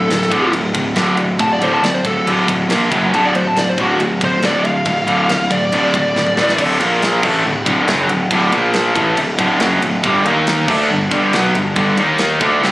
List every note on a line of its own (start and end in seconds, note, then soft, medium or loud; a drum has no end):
0.00 0.52 A4 medium
0.10 0.30 D1 medium
0.10 0.30 D2 medium
0.10 0.30 A2 medium
0.10 snare loud
0.10 ride medium
0.22 snare soft
0.31 0.52 D1 medium
0.31 0.52 D2 loud
0.31 0.52 A2 loud
0.31 0.52 D3 loud
0.31 kick medium
0.31 ride medium
0.53 0.73 D1 medium
0.53 0.73 D2 medium
0.53 0.73 A2 medium
0.53 ride loud
0.74 0.95 D1 medium
0.74 0.94 D2 medium
0.74 0.94 A2 medium
0.74 kick loud
0.74 ride medium
0.96 1.37 D1 loud
0.96 1.17 D2 medium
0.96 1.17 A2 medium
0.96 1.17 D3 medium
0.96 snare loud
0.96 ride loud
1.17 1.37 D2 medium
1.17 1.38 A2 medium
1.17 ride medium
1.39 1.60 D1 loud
1.39 1.59 D2 medium
1.39 1.60 A2 medium
1.39 1.51 A5 loud
1.39 kick loud
1.39 ride medium
1.53 1.62 D5 medium
1.61 1.82 D1 medium
1.61 1.82 D2 loud
1.61 1.82 A2 loud
1.61 1.82 D3 loud
1.61 1.73 C5 medium
1.61 ride medium
1.74 1.84 A5 medium
1.83 2.03 D1 medium
1.83 2.02 D2 medium
1.83 2.02 A2 medium
1.83 1.94 D5 medium
1.83 snare loud
1.83 ride medium
1.94 2.05 C5 medium
2.05 2.25 D1 medium
2.05 2.25 D2 medium
2.05 2.25 A2 medium
2.05 2.27 A4 loud
2.05 kick medium
2.05 ride medium
2.26 2.47 D1 medium
2.26 2.47 D2 medium
2.26 2.47 A2 loud
2.26 2.47 D3 medium
2.26 ride loud
2.48 2.69 D1 loud
2.48 2.68 D2 medium
2.48 2.68 A2 medium
2.48 kick medium
2.48 ride medium
2.69 2.90 A#1 medium
2.69 2.90 A#2 medium
2.69 2.90 F3 loud
2.69 2.91 A#3 loud
2.69 snare loud
2.69 ride loud
2.90 3.12 F#1 medium
2.90 3.11 F#2 medium
2.90 3.12 C#3 medium
2.90 3.12 F#3 medium
2.90 kick loud
2.90 ride medium
3.13 3.33 D1 loud
3.13 3.33 D2 loud
3.13 3.33 A2 medium
3.13 3.34 D3 loud
3.13 3.24 A5 loud
3.13 ride loud
3.25 3.36 D5 medium
3.35 3.55 D1 medium
3.35 3.54 D2 medium
3.35 3.54 A2 medium
3.35 3.46 C5 medium
3.35 ride medium
3.47 3.57 A5 medium
3.56 3.77 D1 medium
3.56 3.75 D2 medium
3.56 3.76 A2 medium
3.56 3.69 D5 medium
3.56 snare loud
3.56 ride medium
3.69 3.79 C5 medium
3.78 3.98 D1 loud
3.78 3.98 D2 loud
3.78 3.98 A2 loud
3.78 3.98 D3 loud
3.78 4.00 F#4 loud
3.78 kick medium
3.78 ride medium
3.99 4.19 D1 medium
3.99 4.19 D2 medium
3.99 4.19 A2 medium
3.99 ride loud
4.21 4.41 D1 loud
4.21 4.41 D2 medium
4.21 4.41 A2 medium
4.21 4.44 C5 loud
4.21 kick loud
4.21 ride medium
4.42 4.83 D1 loud
4.42 4.63 D2 medium
4.42 4.63 A2 medium
4.42 4.63 D3 loud
4.42 4.66 D5 medium
4.42 snare loud
4.42 ride loud
4.65 4.84 D2 medium
4.65 4.84 A2 medium
4.65 5.49 F5 medium
4.65 ride medium
4.85 5.06 D1 loud
4.85 5.06 D2 medium
4.85 5.06 A2 medium
4.85 kick loud
4.85 ride loud
5.07 5.28 D1 medium
5.07 5.27 D2 loud
5.07 5.27 A2 loud
5.07 5.28 D3 loud
5.07 ride medium
5.29 5.50 D1 medium
5.29 5.48 D2 medium
5.29 5.48 A2 medium
5.29 snare loud
5.29 ride loud
5.50 5.71 D1 loud
5.50 5.70 D2 medium
5.50 5.70 A2 medium
5.50 5.72 D5 medium
5.50 kick medium
5.50 ride medium
5.72 5.92 D1 medium
5.72 5.92 D2 medium
5.72 5.93 A2 loud
5.72 5.93 D3 loud
5.72 5.94 D5 medium
5.72 ride loud
5.94 6.14 D1 loud
5.94 6.13 D2 medium
5.94 6.13 A2 medium
5.94 6.58 D5 loud
5.94 kick loud
5.94 ride medium
6.16 6.36 D1 loud
6.16 6.35 D2 medium
6.16 6.35 A2 medium
6.16 snare medium
6.27 mid tom medium
6.37 6.57 A1 medium
6.37 6.57 A2 medium
6.37 6.58 E3 medium
6.37 6.58 A3 loud
6.37 snare medium
6.49 snare medium
6.58 6.79 D1 loud
6.58 6.81 D2 loud
6.58 6.82 A2 loud
6.58 6.83 D3 loud
6.58 kick loud
6.58 crash loud
6.80 7.20 A#1 medium
6.80 7.23 A#2 medium
6.80 7.24 F3 loud
6.80 7.24 A#3 loud
6.80 ride medium
7.02 snare loud
7.02 ride loud
7.23 7.43 A1 loud
7.23 7.44 A2 loud
7.23 7.45 E3 loud
7.23 7.45 A3 loud
7.23 kick loud
7.23 crash loud
7.44 7.65 D1 medium
7.44 7.62 D2 medium
7.44 7.63 A2 medium
7.66 7.86 D1 loud
7.66 7.87 D2 loud
7.66 7.88 A2 medium
7.66 7.88 D3 loud
7.66 kick medium
7.66 ride medium
7.87 8.08 F#1 loud
7.87 8.09 F#2 medium
7.87 8.09 C#3 loud
7.87 8.09 F#3 loud
7.87 snare loud
7.87 ride loud
8.09 8.29 D1 medium
8.09 8.27 D2 medium
8.09 8.27 A2 medium
8.09 ride medium
8.31 8.51 D1 loud
8.31 8.52 D2 medium
8.31 8.52 A2 medium
8.31 8.53 D3 loud
8.31 kick loud
8.31 ride loud
8.52 8.93 A#1 medium
8.52 8.95 A#2 loud
8.52 8.95 F3 loud
8.52 8.96 A#3 loud
8.52 ride medium
8.74 snare loud
8.74 ride loud
8.96 9.16 A1 loud
8.96 9.16 A2 loud
8.96 9.17 E3 loud
8.96 9.17 A3 loud
8.96 kick loud
8.96 ride medium
9.17 9.37 D1 medium
9.17 9.34 D2 medium
9.17 9.34 A2 medium
9.17 ride loud
9.39 9.59 D1 loud
9.39 9.60 D2 loud
9.39 9.60 A2 loud
9.39 9.60 D3 loud
9.39 kick loud
9.39 ride medium
9.60 9.80 F#1 loud
9.60 9.82 F#2 medium
9.60 9.82 C#3 loud
9.60 9.82 F#3 loud
9.60 snare loud
9.60 ride loud
9.82 10.02 D1 medium
9.82 9.99 D2 medium
9.82 9.99 A2 medium
9.82 ride medium
10.03 10.24 G1 loud
10.03 10.24 G2 loud
10.03 10.24 D3 loud
10.03 10.25 G3 loud
10.03 kick loud
10.03 ride loud
10.24 10.65 D#2 loud
10.24 10.67 D#3 loud
10.24 10.68 A#3 loud
10.24 10.68 D#4 loud
10.24 ride medium
10.47 snare loud
10.47 ride loud
10.67 10.88 D2 loud
10.67 10.88 D3 loud
10.67 10.89 A3 loud
10.67 10.89 D4 loud
10.67 kick loud
10.67 crash loud
10.89 11.10 G1 medium
10.89 11.07 G2 medium
10.89 11.07 D3 medium
11.11 11.32 G1 loud
11.11 11.32 G2 medium
11.11 11.32 D3 loud
11.11 11.32 G3 loud
11.11 kick medium
11.11 ride medium
11.33 11.53 B1 loud
11.33 11.54 B2 medium
11.33 11.54 F#3 medium
11.33 11.55 B3 loud
11.33 snare loud
11.33 ride medium
11.54 11.75 G1 medium
11.54 11.72 G2 medium
11.54 11.72 D3 medium
11.54 ride medium
11.76 11.96 G1 loud
11.76 11.97 G2 loud
11.76 11.98 D3 medium
11.76 11.98 G3 medium
11.76 kick loud
11.76 ride loud
11.97 12.38 D#2 medium
11.97 12.40 D#3 loud
11.97 12.41 A#3 loud
11.97 12.41 D#4 loud
11.97 ride medium
12.18 snare loud
12.18 ride loud
12.40 12.61 D2 medium
12.40 12.64 D3 loud
12.40 12.64 A3 loud
12.40 12.62 D4 loud
12.40 kick loud
12.40 ride medium
12.63 12.72 C2 medium
12.63 12.72 C3 medium
12.63 12.72 G3 medium
12.63 12.72 C4 loud
12.63 snare medium